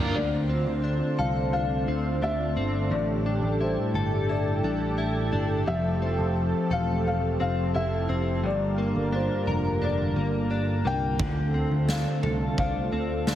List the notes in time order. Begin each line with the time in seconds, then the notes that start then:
Already playing: G1 G2 A#3 D4 F4 A#4 F5 G5 D6
0.15 D2 D3 A3 C4 D4 F4 C5 D5
0.49 C4
0.67 D2
0.84 D4
1.19 C2 A4 F5
1.53 D4 F5
1.88 D2 C4
2.22 D2 D4 E5
2.56 G1 C4
2.90 A1 A2 G3 G4 A4 D5
3.26 D4
3.43 A1
3.61 E4 C5
3.94 G1 A4
4.29 E4 D5
4.63 A1 D4
4.98 E4
5.33 G1 D4
5.67 F1 F3 A3 C4 E5
6.02 C4
6.19 F1
6.70 E1 A4 F5
7.07 F5
7.40 F1 C4 F5
7.75 F1 E4 E5
8.09 F1 C4
8.43 G1 G2 D3 G3 A#3 F4 A#4 D5
8.78 A#3
8.96 G1
9.12 D4 C5
9.47 F1 A#4
9.82 D4 D5
10.16 G1 A#3
10.51 D4
10.85 C2 A#3 G5
11.19 D2 D3 A3 C4 A4, kick, floor tom
11.54 C4
11.71 D2
11.89 D4 F5, snare
12.23 C2 A4, floor tom
12.58 D4 F5, kick, floor tom
12.92 D2 C4
13.27 D2 D4, snare